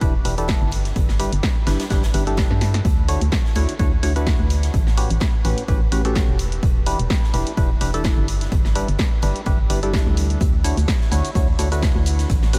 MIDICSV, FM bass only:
0, 0, Header, 1, 2, 480
1, 0, Start_track
1, 0, Key_signature, 2, "major"
1, 0, Tempo, 472441
1, 974, Time_signature, 4, 2, 24, 8
1, 12788, End_track
2, 0, Start_track
2, 0, Title_t, "FM bass"
2, 0, Program_c, 0, 39
2, 14, Note_on_c, 0, 28, 100
2, 204, Note_off_c, 0, 28, 0
2, 255, Note_on_c, 0, 28, 79
2, 578, Note_off_c, 0, 28, 0
2, 627, Note_on_c, 0, 31, 103
2, 935, Note_off_c, 0, 31, 0
2, 975, Note_on_c, 0, 31, 102
2, 1297, Note_off_c, 0, 31, 0
2, 1347, Note_on_c, 0, 31, 99
2, 1430, Note_off_c, 0, 31, 0
2, 1695, Note_on_c, 0, 31, 104
2, 1796, Note_off_c, 0, 31, 0
2, 1935, Note_on_c, 0, 31, 81
2, 2124, Note_off_c, 0, 31, 0
2, 2175, Note_on_c, 0, 31, 96
2, 2497, Note_off_c, 0, 31, 0
2, 2546, Note_on_c, 0, 43, 91
2, 2854, Note_off_c, 0, 43, 0
2, 2894, Note_on_c, 0, 38, 100
2, 3217, Note_off_c, 0, 38, 0
2, 3267, Note_on_c, 0, 38, 97
2, 3350, Note_off_c, 0, 38, 0
2, 3615, Note_on_c, 0, 38, 101
2, 3716, Note_off_c, 0, 38, 0
2, 3855, Note_on_c, 0, 38, 101
2, 4044, Note_off_c, 0, 38, 0
2, 4094, Note_on_c, 0, 38, 80
2, 4417, Note_off_c, 0, 38, 0
2, 4466, Note_on_c, 0, 38, 102
2, 4774, Note_off_c, 0, 38, 0
2, 4815, Note_on_c, 0, 33, 101
2, 5137, Note_off_c, 0, 33, 0
2, 5186, Note_on_c, 0, 33, 101
2, 5269, Note_off_c, 0, 33, 0
2, 5534, Note_on_c, 0, 33, 100
2, 5636, Note_off_c, 0, 33, 0
2, 5774, Note_on_c, 0, 33, 102
2, 5964, Note_off_c, 0, 33, 0
2, 6015, Note_on_c, 0, 33, 80
2, 6338, Note_off_c, 0, 33, 0
2, 6386, Note_on_c, 0, 28, 98
2, 6694, Note_off_c, 0, 28, 0
2, 6734, Note_on_c, 0, 28, 100
2, 7057, Note_off_c, 0, 28, 0
2, 7106, Note_on_c, 0, 28, 97
2, 7189, Note_off_c, 0, 28, 0
2, 7454, Note_on_c, 0, 28, 102
2, 7556, Note_off_c, 0, 28, 0
2, 7694, Note_on_c, 0, 28, 104
2, 7884, Note_off_c, 0, 28, 0
2, 7934, Note_on_c, 0, 28, 79
2, 8257, Note_off_c, 0, 28, 0
2, 8306, Note_on_c, 0, 31, 98
2, 8614, Note_off_c, 0, 31, 0
2, 8654, Note_on_c, 0, 31, 100
2, 8977, Note_off_c, 0, 31, 0
2, 9027, Note_on_c, 0, 31, 97
2, 9110, Note_off_c, 0, 31, 0
2, 9375, Note_on_c, 0, 31, 102
2, 9476, Note_off_c, 0, 31, 0
2, 9614, Note_on_c, 0, 31, 100
2, 9804, Note_off_c, 0, 31, 0
2, 9855, Note_on_c, 0, 31, 81
2, 10178, Note_off_c, 0, 31, 0
2, 10226, Note_on_c, 0, 38, 96
2, 10534, Note_off_c, 0, 38, 0
2, 10574, Note_on_c, 0, 38, 101
2, 10897, Note_off_c, 0, 38, 0
2, 10946, Note_on_c, 0, 38, 102
2, 11029, Note_off_c, 0, 38, 0
2, 11294, Note_on_c, 0, 38, 103
2, 11395, Note_off_c, 0, 38, 0
2, 11534, Note_on_c, 0, 38, 102
2, 11724, Note_off_c, 0, 38, 0
2, 11774, Note_on_c, 0, 38, 77
2, 12097, Note_off_c, 0, 38, 0
2, 12146, Note_on_c, 0, 38, 103
2, 12454, Note_off_c, 0, 38, 0
2, 12494, Note_on_c, 0, 33, 102
2, 12788, Note_off_c, 0, 33, 0
2, 12788, End_track
0, 0, End_of_file